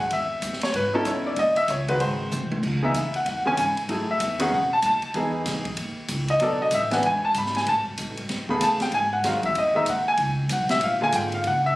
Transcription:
0.00 grand piano F#5
0.10 upright bass E2, grand piano E5, kick, ride
0.42 upright bass D#2, kick, hi-hat pedal, ride
0.53 snare
0.61 grand piano C#5, snare, ride
0.74 upright bass G#2, grand piano B4, kick, ride
0.94 grand piano B3 C#4 D#4 E4 A4
1.05 upright bass E2, grand piano C#5, kick, hi-hat pedal, ride
1.26 grand piano D5
1.36 upright bass D#2, grand piano D#5, kick, ride
1.56 grand piano E5, muted upright bass stroke, ride
1.68 upright bass C#2, grand piano C#5, kick, hi-hat pedal, ride
1.88 grand piano D#3 G#3 C4 F#4 B4, ride
2.00 upright bass G#1, grand piano C5, kick, ride
2.31 upright bass C2, hi-hat pedal, mid tom
2.51 high tom
2.63 upright bass C#2, kick, crash
2.83 grand piano C#3 E3 B3 D#4 E5
2.94 upright bass D#2, kick, hi-hat pedal, ride
3.14 grand piano F#5, ride
3.26 upright bass E2, grand piano F#5, kick, ride
3.45 grand piano C#3 E3 B3 C#4 G#5
3.56 upright bass G#2, grand piano G5, kick, hi-hat pedal, ride
3.60 grand piano G#5
3.77 ride
3.89 upright bass F#2, grand piano F#3 A3 E4 G#4, kick, ride
4.11 grand piano E5
4.20 upright bass E2, kick, hi-hat pedal, ride
4.39 grand piano D#3 B3 C#4 G#4 F#5, ride
4.52 upright bass B1, grand piano F#5, kick
4.73 grand piano A5
4.82 upright bass D#2, grand piano A5, kick, hi-hat pedal, ride
5.02 muted upright bass stroke, ride
5.14 upright bass E2, grand piano E3 B3 D#4 G#4, kick, ride
5.46 upright bass B1, kick, snare, hi-hat pedal, ride
5.65 kick, ride
5.77 upright bass D#2, kick, ride
6.08 upright bass C#2, kick, hi-hat pedal, ride
6.28 grand piano D#5, ride
6.40 upright bass B1, grand piano F#3 B3 D4 A4 D5, kick, ride
6.62 grand piano D#5
6.71 upright bass A1, grand piano E5, kick, hi-hat pedal, ride
6.91 grand piano E3 B3 D4 B4 F#5, snare, ride
7.03 upright bass E1, grand piano G#5, kick, ride
7.25 grand piano A5
7.34 upright bass G#1, grand piano B5, kick, hi-hat pedal, ride
7.46 snare
7.55 grand piano G#5, snare, ride
7.66 upright bass A1, grand piano A5, kick, ride
7.77 upright bass G#1
7.88 upright bass E1
7.98 upright bass B1, kick, hi-hat pedal, ride
8.09 upright bass A1
8.17 upright bass G#1, ride
8.29 upright bass F#2, kick, snare, ride
8.49 grand piano C#3 A3 B3 G#4 B5, kick
8.61 upright bass E2, grand piano A5, kick, hi-hat pedal, ride
8.80 grand piano G5, snare, ride
8.92 upright bass G#2, grand piano G#5, kick, ride
9.13 grand piano F#5
9.24 upright bass F#2, grand piano D#3 G#3 C4 F#4 F5, kick, snare, hi-hat pedal, ride
9.43 grand piano E5, kick, ride
9.55 upright bass E2, grand piano D#5, kick, ride
9.75 grand piano D#3 G#3 C4 D#4 E5
9.86 upright bass D#2, grand piano F#5, kick, hi-hat pedal, ride
10.08 grand piano G#5
10.17 upright bass C#2, kick, ride
10.49 upright bass B1, grand piano F#5, kick, hi-hat pedal, ride
10.69 grand piano E5, snare, ride
10.81 upright bass A#1, grand piano F5, kick, ride
11.01 grand piano D3 G#3 A#3 F4 G#5
11.12 upright bass G#1, grand piano G5, kick, hi-hat pedal, ride
11.32 grand piano F5, ride
11.44 upright bass F#1, grand piano F#5, kick, ride
11.66 grand piano E5

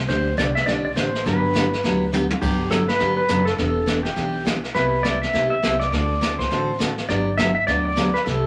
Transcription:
0.08 upright bass D2, steel-string acoustic guitar D3 G3 C4 D4 G4, pedal steel guitar C5, brush sweep, kick, snare
0.37 upright bass C2, steel-string acoustic guitar D3 G3 C4 D4 G4, pedal steel guitar D5, kick, snare, hi-hat pedal
0.55 pedal steel guitar E5, snare
0.66 upright bass B1, steel-string acoustic guitar D3 G3 C4 D4 G4, pedal steel guitar D5, brush sweep, kick, snare
0.85 pedal steel guitar D5
0.96 upright bass A1, steel-string acoustic guitar D3 G3 C4 D4 G4, pedal steel guitar C5, kick, snare, hi-hat pedal
1.15 snare
1.25 upright bass G1, steel-string acoustic guitar D3 F#3 B3 D4 G4, pedal steel guitar B4, brush sweep, kick, snare
1.53 steel-string acoustic guitar D3 F#3 B3 D4 G4, kick, snare, hi-hat pedal
1.73 snare
1.83 upright bass D2, steel-string acoustic guitar D3 F#3 B3 D4 G4, brush sweep, kick, snare
2.12 steel-string acoustic guitar D3 F#3 B3 D4 G4, hi-hat pedal, high tom
2.31 high tom
2.41 upright bass G1, steel-string acoustic guitar D3 F#3 B3 D4 G4, pedal steel guitar G4, brush sweep, kick, snare, crash
2.70 steel-string acoustic guitar D3 F#3 B3 D4 G4, pedal steel guitar A4, snare, hi-hat pedal
2.88 pedal steel guitar B4, snare
2.99 upright bass G1, steel-string acoustic guitar D3 F#3 B3 D4 G4, brush sweep, kick, snare
3.17 pedal steel guitar B4
3.28 upright bass F#1, steel-string acoustic guitar D3 F#3 B3 D4 G4, kick, snare, hi-hat pedal
3.45 pedal steel guitar A4, snare
3.57 upright bass E1, steel-string acoustic guitar E3 B3 D4 G4, pedal steel guitar A4, brush sweep, kick, snare
3.86 steel-string acoustic guitar E3 B3 D4 G4, kick, snare, hi-hat pedal
4.03 pedal steel guitar G4, snare
4.16 upright bass B1, steel-string acoustic guitar E3 B3 D4 G4, brush sweep, kick, snare
4.45 steel-string acoustic guitar E3 B3 D4 G4, kick, snare, hi-hat pedal
4.64 snare
4.74 upright bass C2, steel-string acoustic guitar C3 G3 B3 E4 G4, pedal steel guitar B4, brush sweep, kick, snare
5.03 steel-string acoustic guitar C3 G3 B3 E4 G4, pedal steel guitar D5, kick, snare, hi-hat pedal
5.22 pedal steel guitar E5, snare
5.33 upright bass B1, steel-string acoustic guitar C3 G3 B3 E4 G4, brush sweep, kick, snare
5.50 pedal steel guitar E5
5.63 upright bass C2, steel-string acoustic guitar C3 G3 B3 E4 G4, kick, snare, hi-hat pedal
5.80 pedal steel guitar D5, snare
5.91 upright bass D2, steel-string acoustic guitar D3 A3 C4 F#4 A4, pedal steel guitar D5, brush sweep, kick, snare
6.21 steel-string acoustic guitar D3 A3 C4 F#4 A4, kick, snare, hi-hat pedal
6.39 pedal steel guitar C5, kick, snare
6.50 upright bass A1, steel-string acoustic guitar D3 A3 C4 F#4 A4, brush sweep, kick, snare
6.79 steel-string acoustic guitar D3 A3 C4 F#4 A4, kick, snare, hi-hat pedal
6.98 snare
7.08 upright bass G1, steel-string acoustic guitar D3 F#3 B3 D4 G4, pedal steel guitar D5, brush sweep, kick, snare
7.38 steel-string acoustic guitar D3 F#3 B3 D4 G4, pedal steel guitar E5, kick, snare, hi-hat pedal
7.55 pedal steel guitar E5
7.67 upright bass D2, steel-string acoustic guitar D3 F#3 B3 D4 G4, pedal steel guitar D5, brush sweep, kick, snare
7.85 pedal steel guitar D5
7.96 steel-string acoustic guitar D3 F#3 B3 D4 G4, kick, snare, hi-hat pedal
8.14 pedal steel guitar B4, snare
8.25 upright bass C2, steel-string acoustic guitar C3 G3 B3 E4 G4, pedal steel guitar A4, brush sweep, kick, snare

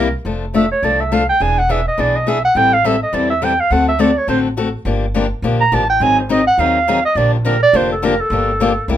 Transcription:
Already playing: upright bass C2, clarinet A#4
0.25 upright bass F1, steel-string acoustic guitar F3 A3 D4 A4
0.54 steel-string acoustic guitar F3 A3 D4 A4, clarinet E5
0.72 clarinet C#5
0.83 upright bass C2, steel-string acoustic guitar F3 A3 D4 A4, clarinet D5
1.01 clarinet E5
1.12 steel-string acoustic guitar F3 A3 D4 A4, clarinet F5
1.29 clarinet G5
1.40 upright bass E1, steel-string acoustic guitar E3 B3 D4 G#4, clarinet G#5
1.59 clarinet F#5
1.69 steel-string acoustic guitar E3 B3 D4 G#4, clarinet E5
1.88 clarinet D#5
1.98 upright bass B1, steel-string acoustic guitar E3 B3 D4 G#4, clarinet D5
2.16 clarinet D#5
2.27 steel-string acoustic guitar E3 B3 D4 G#4, clarinet E5
2.45 clarinet F#5
2.55 upright bass A1, steel-string acoustic guitar E3 G3 C4 E4 A4, clarinet G5
2.73 clarinet F5
2.84 steel-string acoustic guitar E3 G3 C4 E4 A4, clarinet E5
3.03 clarinet D#5
3.13 upright bass E2, steel-string acoustic guitar E3 G3 C4 E4 A4, clarinet D5
3.30 clarinet E5
3.42 steel-string acoustic guitar E3 G3 C4 E4 A4, clarinet G5
3.60 clarinet F5
3.70 upright bass D2, steel-string acoustic guitar D3 A3 C4 F#4 A4, clarinet F#5
3.89 clarinet E5
3.99 steel-string acoustic guitar D3 A3 C4 F#4 A4, clarinet D5
4.18 clarinet C#5
4.28 upright bass A1, steel-string acoustic guitar D3 A3 C4 F#4 A4, clarinet C5
4.57 steel-string acoustic guitar D3 A3 C4 F#4 A4
4.85 upright bass G1, steel-string acoustic guitar D3 F3 A#3 D4 G4
5.14 steel-string acoustic guitar D3 F3 A#3 D4 G4
5.42 upright bass A#1, steel-string acoustic guitar D3 F3 A#3 D4 G4
5.61 clarinet A#5
5.72 upright bass A1, steel-string acoustic guitar D3 F3 A#3 D4 G4, clarinet A5
5.90 clarinet G5
6.00 upright bass G#1, steel-string acoustic guitar D#3 F#3 C4 D#4 G#4, clarinet G#5
6.20 clarinet C5
6.29 steel-string acoustic guitar D#3 F#3 C4 D#4 G#4, clarinet D#5
6.47 clarinet F#5
6.58 upright bass D#2, steel-string acoustic guitar D#3 F#3 C4 D#4 G#4, clarinet F5
6.88 steel-string acoustic guitar D#3 F#3 C4 D#4 G#4
7.05 clarinet D#5
7.15 upright bass A#1, steel-string acoustic guitar D3 F3 A#3 D4 G4, clarinet D5
7.34 clarinet F4
7.45 steel-string acoustic guitar D3 F3 A#3 D4 G4, clarinet A#4
7.62 clarinet D5
7.73 upright bass F1, steel-string acoustic guitar D3 F3 A#3 D4 G4, clarinet C5
7.92 clarinet A4
8.02 steel-string acoustic guitar D3 F3 A#3 D4 G4, clarinet A#4
8.21 clarinet A4
8.30 upright bass G1, steel-string acoustic guitar D3 F3 A#3 D4 G4
8.60 steel-string acoustic guitar D3 F3 A#3 D4 G4
8.88 upright bass C2, steel-string acoustic guitar C3 G3 A#3 E4 G4

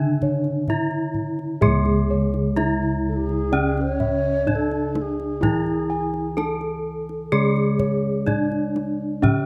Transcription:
Already playing: kettle gongs C#3 G#4 E5, bronze metallophone D3 D4
0.22 kettle gongs C#5, kendang low
0.44 kendang slap
0.68 kettle gongs D4 E5, bronze metallophone E4, kendang low
0.91 kendang slap
1.14 kendang low
1.39 kendang slap
1.61 bronze metallophone G#3 G#4, kettle gongs G#4 E5, kendang low
1.66 kettle gongs C#2
1.86 kendang slap
2.10 kettle gongs C#5
2.34 kendang slap
2.56 kettle gongs D4 E5, bronze metallophone E4, kendang high
2.83 kendang slap
3.07 xiao A4
3.16 xiao G#4
3.29 kendang slap
3.52 bronze metallophone C#3 C#4, kettle gongs D5
3.77 xiao C#5, kendang slap
4.00 kettle gongs E5, kendang low
4.47 kettle gongs D4 D5, bronze metallophone D4, kendang low
4.51 xiao A4 C#5
4.71 kendang slap
4.95 kendang high
5.01 xiao G#4
5.20 kendang slap
5.41 bronze metallophone E3 E4, kettle gongs E4 A5, kendang high, kendang low
5.66 kendang slap
5.90 kettle gongs G#5
6.14 kendang slap
6.37 kettle gongs D4 A5, bronze metallophone A4, kendang high
6.61 kendang slap
7.09 kendang slap
7.32 kettle gongs C#3 D5, bronze metallophone G#3 G#4
7.56 kendang slap
7.79 kettle gongs C#5, kendang low
8.27 bronze metallophone D4, kettle gongs D4 D5, kendang high, kendang low
8.52 kendang slap
8.76 kendang high
9.22 bronze metallophone C#3 C#4, kettle gongs C#4 E5, kendang low

